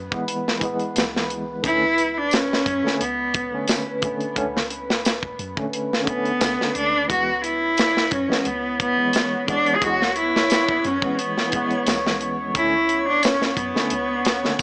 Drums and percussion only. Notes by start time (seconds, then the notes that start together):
0.12 kick
0.28 closed hi-hat
0.48 snare
0.61 kick, closed hi-hat
0.79 closed hi-hat
0.96 snare, closed hi-hat, tambourine
1.16 snare
1.30 closed hi-hat
1.64 kick, closed hi-hat
1.98 closed hi-hat
2.31 snare, closed hi-hat, tambourine
2.53 snare
2.66 kick, closed hi-hat
2.87 snare
3.01 closed hi-hat
3.34 kick, closed hi-hat
3.68 snare, closed hi-hat, tambourine
4.02 kick, closed hi-hat
4.20 closed hi-hat
4.36 kick, closed hi-hat
4.57 snare
4.70 closed hi-hat
4.90 snare
5.05 snare, closed hi-hat, tambourine
5.23 kick
5.39 closed hi-hat
5.57 kick
5.73 closed hi-hat
5.93 snare
6.07 kick, closed hi-hat
6.25 closed hi-hat
6.41 snare, closed hi-hat, tambourine
6.61 snare
6.75 closed hi-hat
7.10 kick, closed hi-hat
7.44 closed hi-hat
7.77 snare, closed hi-hat, tambourine
7.97 snare
8.11 kick, closed hi-hat
8.32 snare
8.45 closed hi-hat
8.80 kick, closed hi-hat
9.13 snare, closed hi-hat, tambourine
9.48 kick, closed hi-hat
9.66 closed hi-hat
9.82 kick, closed hi-hat
10.02 snare
10.16 closed hi-hat
10.36 snare
10.50 snare, closed hi-hat, tambourine
10.69 kick
10.84 closed hi-hat
11.02 kick
11.19 closed hi-hat
11.38 snare
11.52 kick, closed hi-hat
11.71 closed hi-hat
11.86 snare, closed hi-hat, tambourine
12.07 snare
12.21 closed hi-hat
12.55 kick, closed hi-hat
12.89 closed hi-hat
13.23 snare, closed hi-hat, tambourine
13.42 snare
13.57 kick, closed hi-hat
13.76 snare
13.90 closed hi-hat
14.25 snare, closed hi-hat
14.45 snare
14.59 closed hi-hat